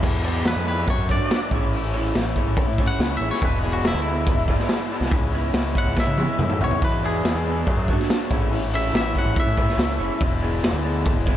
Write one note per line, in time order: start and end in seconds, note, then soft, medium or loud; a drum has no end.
0.02 0.45 E2 medium
0.02 0.42 E2 medium
0.02 0.45 B2 medium
0.02 0.24 E3 medium
0.02 0.24 G#3 medium
0.02 0.23 D4 medium
0.02 0.22 E4 medium
0.02 kick loud
0.02 crash loud
0.23 0.43 E3 medium
0.23 0.45 G#3 medium
0.23 0.53 B3 medium
0.23 0.45 D4 medium
0.23 0.46 E4 medium
0.23 0.52 E4 medium
0.23 0.52 G#4 medium
0.23 0.52 D5 medium
0.45 0.55 E2 medium
0.45 0.86 E3 medium
0.45 0.87 G#3 medium
0.45 0.87 D4 medium
0.45 0.88 E4 medium
0.45 0.67 B4 medium
0.45 snare medium
0.45 open hi-hat soft
0.56 0.85 F2 medium
0.67 0.89 B3 medium
0.67 0.89 E4 medium
0.67 0.88 G#4 medium
0.67 0.88 B4 medium
0.67 0.88 D5 medium
0.86 0.97 F#2 medium
0.86 1.29 F#3 medium
0.86 1.09 A3 medium
0.86 1.08 D4 medium
0.86 1.07 F#4 medium
0.86 1.10 C#5 medium
0.86 kick loud
0.86 open hi-hat soft
0.99 1.18 F#2 medium
1.08 1.29 A3 medium
1.08 1.30 D4 medium
1.08 1.38 D4 medium
1.08 1.31 F#4 medium
1.08 1.37 F#4 medium
1.08 1.37 A4 medium
1.08 1.37 C#5 medium
1.08 1.51 D5 medium
1.08 kick medium
1.30 1.50 F#3 medium
1.30 1.50 A3 medium
1.30 1.51 D4 medium
1.30 1.50 F#4 medium
1.30 snare medium
1.30 open hi-hat soft
1.51 2.11 A1 medium
1.51 1.70 A2 medium
1.51 1.72 E3 medium
1.51 1.72 A3 medium
1.51 1.73 C#4 medium
1.51 1.80 C#4 medium
1.51 1.74 E4 medium
1.51 1.79 E4 medium
1.51 1.79 G#4 medium
1.51 1.79 C#5 medium
1.51 kick medium
1.72 2.15 A2 medium
1.72 2.13 E3 medium
1.72 1.94 A3 medium
1.72 1.93 C#4 medium
1.72 1.92 E4 loud
1.72 open hi-hat medium
1.92 2.13 A3 medium
1.92 2.14 C#4 medium
1.92 2.22 C#4 medium
1.92 2.15 E4 medium
1.92 2.22 E4 medium
1.92 2.22 G#4 medium
1.92 2.21 C#5 medium
2.14 2.34 A1 medium
2.14 2.99 E3 medium
2.14 2.79 A3 medium
2.14 2.78 C#4 medium
2.14 2.77 E4 medium
2.14 snare medium
2.14 open hi-hat soft
2.36 2.65 C#4 medium
2.36 2.65 E4 medium
2.36 2.64 G#4 medium
2.36 2.64 C#5 medium
2.36 kick medium
2.46 2.56 A1 medium
2.57 kick loud
2.57 open hi-hat medium
2.67 2.87 A2 medium
2.77 2.99 A3 medium
2.77 2.99 C#4 medium
2.77 3.07 C#4 medium
2.77 3.01 E4 medium
2.77 3.07 E4 medium
2.77 3.07 G#4 medium
2.77 3.06 C#5 medium
2.77 kick medium
2.88 3.14 F#5 medium
2.99 3.19 C#2 medium
2.99 3.41 A2 medium
2.99 3.42 E3 medium
2.99 3.21 A3 medium
2.99 3.20 C#4 loud
2.99 3.20 E4 loud
2.99 snare loud
2.99 open hi-hat medium
3.17 3.30 A1 medium
3.17 3.44 E4 medium
3.17 3.29 E5 medium
3.21 3.42 A3 medium
3.21 3.41 C#4 medium
3.21 3.43 C#4 medium
3.21 3.43 E4 medium
3.21 3.43 G#4 medium
3.21 3.43 C#5 medium
3.31 3.43 C#5 medium
3.31 snare soft
3.41 3.81 E1 medium
3.41 3.84 E2 medium
3.41 3.85 B2 medium
3.41 3.65 E3 medium
3.41 3.64 G#3 medium
3.41 3.63 D4 loud
3.41 3.62 E4 loud
3.41 3.59 B4 medium
3.41 kick loud
3.41 open hi-hat medium
3.59 3.86 E4 medium
3.59 3.72 G#4 medium
3.64 3.83 E3 medium
3.64 3.84 G#3 medium
3.64 3.92 B3 medium
3.64 3.84 D4 medium
3.64 3.92 E4 medium
3.64 3.92 G#4 medium
3.64 3.91 D5 medium
3.73 3.86 F#4 medium
3.83 3.93 E1 medium
3.83 4.50 E3 medium
3.83 4.50 G#3 medium
3.83 4.48 D4 medium
3.83 4.48 E4 medium
3.83 4.00 E4 medium
3.83 snare medium
3.83 open hi-hat medium
3.94 4.34 D2 medium
4.02 5.24 E4 medium
4.07 4.34 B3 medium
4.07 4.34 E4 medium
4.07 4.34 G#4 medium
4.07 4.34 D5 medium
4.26 kick loud
4.26 open hi-hat medium
4.36 4.57 E1 medium
4.48 4.70 E3 medium
4.48 4.70 G#3 medium
4.48 4.77 B3 medium
4.48 4.70 D4 medium
4.48 4.71 E4 medium
4.48 4.76 E4 medium
4.48 4.76 G#4 medium
4.48 4.76 D5 medium
4.48 kick medium
4.59 snare soft
4.69 5.11 E2 medium
4.69 5.11 B2 medium
4.69 4.92 E3 medium
4.69 4.92 G#3 medium
4.69 4.90 D4 loud
4.69 4.90 E4 loud
4.69 snare medium
4.69 open hi-hat soft
4.90 5.13 E3 medium
4.90 5.13 G#3 medium
4.90 5.13 B3 medium
4.90 5.11 D4 medium
4.90 5.14 E4 medium
4.90 5.13 E4 medium
4.90 5.13 G#4 medium
4.90 5.12 D5 medium
5.01 5.11 C2 medium
5.01 snare soft
5.11 5.50 C#2 medium
5.11 5.55 C#3 medium
5.11 5.53 E3 medium
5.11 5.34 G#3 medium
5.11 5.33 C#4 medium
5.11 5.32 E4 medium
5.11 kick loud
5.11 open hi-hat medium
5.33 5.54 G#3 medium
5.33 5.62 B3 medium
5.33 5.55 C#4 medium
5.33 5.55 E4 medium
5.33 5.61 E4 medium
5.33 5.61 G#4 medium
5.33 5.61 E5 medium
5.53 5.73 C#2 medium
5.53 6.38 E3 medium
5.53 6.19 G#3 medium
5.53 6.18 C#4 medium
5.53 6.17 E4 medium
5.53 snare medium
5.53 open hi-hat medium
5.75 6.04 B3 medium
5.75 6.04 E4 medium
5.75 6.04 G#4 medium
5.75 6.04 E5 medium
5.75 5.98 F#5 medium
5.75 kick medium
5.85 5.96 C#2 medium
5.97 6.60 E5 medium
5.97 kick loud
5.97 snare medium
6.07 6.27 C#3 medium
6.18 6.39 G#3 medium
6.18 6.47 B3 medium
6.18 6.39 C#4 medium
6.18 6.40 E4 medium
6.18 6.46 E4 medium
6.18 6.46 G#4 medium
6.18 6.46 E5 medium
6.18 high tom medium
6.38 6.59 F#2 medium
6.38 6.80 C#3 medium
6.38 6.80 E3 medium
6.38 6.60 G#3 medium
6.38 6.59 C#4 medium
6.38 6.58 E4 medium
6.38 mid tom medium
6.50 mid tom medium
6.59 6.70 B1 medium
6.59 6.81 G#3 soft
6.59 6.82 B3 medium
6.59 6.80 C#4 medium
6.59 6.80 E4 medium
6.59 6.82 E4 medium
6.59 6.82 G#4 medium
6.59 6.82 E5 medium
6.59 floor tom medium
6.64 6.83 C#5 medium
6.71 floor tom medium
6.80 7.23 E2 medium
6.80 7.21 E2 medium
6.80 7.24 B2 medium
6.80 7.03 E3 medium
6.80 7.03 G#3 medium
6.80 7.02 D4 medium
6.80 7.01 E4 medium
6.80 kick loud
6.80 open hi-hat medium
6.80 shaker loud
6.85 7.04 B4 medium
6.93 shaker soft
7.02 7.23 E3 medium
7.02 7.24 G#3 medium
7.02 7.32 B3 medium
7.02 7.24 D4 medium
7.02 7.25 E4 medium
7.02 7.31 E4 medium
7.02 7.31 G#4 medium
7.02 7.87 G#4 medium
7.02 7.31 D5 medium
7.02 shaker medium
7.24 7.34 E2 medium
7.24 7.65 E3 medium
7.24 7.66 G#3 medium
7.24 7.66 D4 medium
7.24 7.66 E4 medium
7.24 snare loud
7.24 open hi-hat medium
7.24 shaker medium
7.34 7.64 E2 medium
7.34 shaker soft
7.46 7.68 B3 medium
7.46 7.68 E4 medium
7.46 7.67 G#4 medium
7.46 7.67 D5 medium
7.46 shaker medium
7.67 7.76 F#2 loud
7.67 8.08 F#3 medium
7.67 7.89 A3 medium
7.67 7.88 D4 medium
7.67 7.87 F#4 medium
7.67 kick loud
7.67 open hi-hat medium
7.67 shaker medium
7.77 7.96 F#2 medium
7.88 8.09 A3 medium
7.88 8.09 D4 medium
7.88 8.17 D4 medium
7.88 8.10 F#4 medium
7.88 8.17 F#4 medium
7.88 8.16 A4 medium
7.88 8.16 C#5 medium
7.88 kick medium
7.88 shaker medium
8.00 snare soft
8.09 8.29 F#3 medium
8.09 8.29 A3 medium
8.09 8.30 D4 loud
8.09 8.30 F#4 medium
8.09 snare loud
8.09 open hi-hat medium
8.09 shaker medium
8.21 shaker soft
8.30 8.90 A1 medium
8.30 8.49 A2 medium
8.30 8.51 E3 medium
8.30 8.51 A3 medium
8.30 8.51 C#4 medium
8.30 8.59 C#4 medium
8.30 8.53 E4 medium
8.30 8.59 E4 medium
8.30 8.59 G#4 medium
8.30 8.58 C#5 medium
8.30 kick medium
8.30 shaker medium
8.50 8.93 A2 medium
8.50 8.93 E3 medium
8.50 8.73 A3 medium
8.50 8.72 C#4 medium
8.50 8.72 E4 loud
8.50 open hi-hat medium
8.50 shaker medium
8.63 shaker soft
8.72 8.93 A3 medium
8.72 8.94 C#4 medium
8.72 9.01 C#4 medium
8.72 8.95 E4 medium
8.72 9.01 E4 medium
8.72 9.01 G#4 medium
8.72 9.01 C#5 medium
8.72 8.95 E5 medium
8.72 shaker medium
8.93 9.13 A1 medium
8.93 9.78 E3 medium
8.93 9.58 A3 medium
8.93 9.57 C#4 medium
8.93 9.56 E4 medium
8.93 9.16 E5 medium
8.93 snare loud
8.93 open hi-hat soft
8.93 shaker medium
9.05 shaker soft
9.15 9.44 C#4 medium
9.15 9.43 E4 medium
9.15 9.43 G#4 medium
9.15 9.43 C#5 medium
9.15 9.37 F#5 medium
9.15 kick medium
9.15 shaker medium
9.25 9.35 A1 medium
9.36 10.61 E5 medium
9.36 kick loud
9.36 open hi-hat medium
9.36 shaker medium
9.47 9.66 A2 medium
9.57 9.78 A3 medium
9.57 9.78 C#4 medium
9.57 9.86 C#4 medium
9.57 9.80 E4 medium
9.57 9.86 E4 medium
9.57 9.85 G#4 medium
9.57 9.85 C#5 medium
9.57 kick medium
9.57 shaker medium
9.69 snare soft
9.77 9.97 C#2 medium
9.77 10.19 A2 medium
9.77 10.21 E3 medium
9.77 10.00 A3 loud
9.77 9.99 C#4 medium
9.77 9.99 E4 loud
9.77 snare loud
9.77 open hi-hat medium
9.77 shaker medium
9.90 shaker soft
9.99 10.09 F#1 medium
9.99 10.21 A3 medium
9.99 10.20 C#4 medium
9.99 10.21 C#4 medium
9.99 10.23 E4 medium
9.99 10.21 E4 medium
9.99 10.21 G#4 medium
9.99 10.21 C#5 medium
9.99 shaker medium
10.20 10.60 E1 medium
10.20 10.63 E2 medium
10.20 10.64 B2 medium
10.20 10.44 E3 loud
10.20 10.43 G#3 loud
10.20 10.41 D4 medium
10.20 10.41 E4 loud
10.20 kick loud
10.20 open hi-hat medium
10.20 shaker medium
10.32 shaker soft
10.42 10.63 E3 medium
10.42 10.64 G#3 medium
10.42 10.71 B3 medium
10.42 10.64 D4 medium
10.42 10.65 E4 medium
10.42 10.70 E4 medium
10.42 10.70 G#4 medium
10.42 10.70 D5 medium
10.42 shaker medium
10.63 10.73 E1 loud
10.63 11.29 E3 medium
10.63 11.28 G#3 medium
10.63 11.27 D4 medium
10.63 11.27 E4 medium
10.63 snare loud
10.63 open hi-hat medium
10.63 shaker medium
10.73 11.12 D2 loud
10.73 shaker soft
10.85 11.13 B3 medium
10.85 11.13 E4 medium
10.85 11.12 G#4 medium
10.85 11.12 D5 medium
10.85 shaker medium
11.06 kick loud
11.06 open hi-hat medium
11.06 shaker medium
11.16 11.35 E1 medium
11.26 11.37 E3 medium
11.26 11.37 G#3 medium
11.26 11.37 B3 medium
11.26 11.37 D4 medium
11.26 11.37 E4 medium
11.26 11.37 G#4 medium
11.26 11.37 D5 medium
11.26 kick medium
11.26 shaker medium